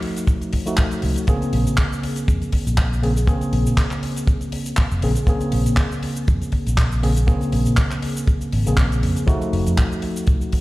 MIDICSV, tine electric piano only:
0, 0, Header, 1, 2, 480
1, 0, Start_track
1, 0, Key_signature, -5, "minor"
1, 0, Tempo, 500000
1, 1228, Time_signature, 4, 2, 24, 8
1, 10184, End_track
2, 0, Start_track
2, 0, Title_t, "Tine electric piano"
2, 0, Program_c, 0, 4
2, 0, Note_on_c, 0, 53, 98
2, 0, Note_on_c, 0, 57, 86
2, 0, Note_on_c, 0, 63, 90
2, 0, Note_on_c, 0, 66, 103
2, 608, Note_off_c, 0, 53, 0
2, 611, Note_off_c, 0, 57, 0
2, 614, Note_off_c, 0, 63, 0
2, 618, Note_off_c, 0, 66, 0
2, 630, Note_on_c, 0, 53, 72
2, 636, Note_on_c, 0, 57, 70
2, 643, Note_on_c, 0, 63, 69
2, 650, Note_on_c, 0, 66, 81
2, 1197, Note_off_c, 0, 53, 0
2, 1200, Note_off_c, 0, 57, 0
2, 1203, Note_off_c, 0, 63, 0
2, 1207, Note_off_c, 0, 66, 0
2, 1220, Note_on_c, 0, 49, 94
2, 1226, Note_on_c, 0, 58, 89
2, 1233, Note_on_c, 0, 60, 87
2, 1238, Note_on_c, 0, 68, 103
2, 2878, Note_off_c, 0, 49, 0
2, 2881, Note_off_c, 0, 58, 0
2, 2884, Note_off_c, 0, 60, 0
2, 2887, Note_off_c, 0, 68, 0
2, 2904, Note_on_c, 0, 49, 76
2, 2906, Note_on_c, 0, 58, 69
2, 2910, Note_on_c, 0, 60, 69
2, 2914, Note_on_c, 0, 68, 81
2, 2986, Note_off_c, 0, 49, 0
2, 2986, Note_off_c, 0, 58, 0
2, 2989, Note_off_c, 0, 60, 0
2, 2990, Note_off_c, 0, 68, 0
2, 3137, Note_on_c, 0, 49, 92
2, 3144, Note_on_c, 0, 58, 83
2, 3150, Note_on_c, 0, 60, 89
2, 3156, Note_on_c, 0, 68, 106
2, 4796, Note_off_c, 0, 49, 0
2, 4800, Note_off_c, 0, 58, 0
2, 4803, Note_off_c, 0, 60, 0
2, 4806, Note_off_c, 0, 68, 0
2, 4827, Note_on_c, 0, 49, 74
2, 4831, Note_on_c, 0, 58, 70
2, 4832, Note_on_c, 0, 60, 70
2, 4836, Note_on_c, 0, 68, 81
2, 4907, Note_off_c, 0, 49, 0
2, 4909, Note_off_c, 0, 58, 0
2, 4909, Note_off_c, 0, 60, 0
2, 4911, Note_off_c, 0, 68, 0
2, 5061, Note_on_c, 0, 49, 94
2, 5067, Note_on_c, 0, 58, 88
2, 5074, Note_on_c, 0, 60, 86
2, 5080, Note_on_c, 0, 68, 108
2, 6718, Note_off_c, 0, 49, 0
2, 6721, Note_off_c, 0, 58, 0
2, 6725, Note_off_c, 0, 60, 0
2, 6728, Note_off_c, 0, 68, 0
2, 6747, Note_on_c, 0, 49, 74
2, 6748, Note_on_c, 0, 58, 68
2, 6755, Note_on_c, 0, 60, 68
2, 6756, Note_on_c, 0, 68, 84
2, 6827, Note_off_c, 0, 49, 0
2, 6827, Note_off_c, 0, 58, 0
2, 6831, Note_off_c, 0, 60, 0
2, 6831, Note_off_c, 0, 68, 0
2, 6975, Note_on_c, 0, 49, 97
2, 6982, Note_on_c, 0, 58, 88
2, 6989, Note_on_c, 0, 60, 87
2, 6994, Note_on_c, 0, 68, 104
2, 8287, Note_off_c, 0, 49, 0
2, 8290, Note_off_c, 0, 58, 0
2, 8294, Note_off_c, 0, 60, 0
2, 8296, Note_off_c, 0, 68, 0
2, 8313, Note_on_c, 0, 49, 76
2, 8320, Note_on_c, 0, 58, 70
2, 8325, Note_on_c, 0, 60, 70
2, 8334, Note_on_c, 0, 68, 82
2, 8878, Note_off_c, 0, 49, 0
2, 8882, Note_off_c, 0, 58, 0
2, 8884, Note_off_c, 0, 60, 0
2, 8889, Note_off_c, 0, 68, 0
2, 8895, Note_on_c, 0, 53, 98
2, 8901, Note_on_c, 0, 57, 88
2, 8907, Note_on_c, 0, 63, 86
2, 8913, Note_on_c, 0, 66, 103
2, 10184, Note_off_c, 0, 53, 0
2, 10184, Note_off_c, 0, 57, 0
2, 10184, Note_off_c, 0, 63, 0
2, 10184, Note_off_c, 0, 66, 0
2, 10184, End_track
0, 0, End_of_file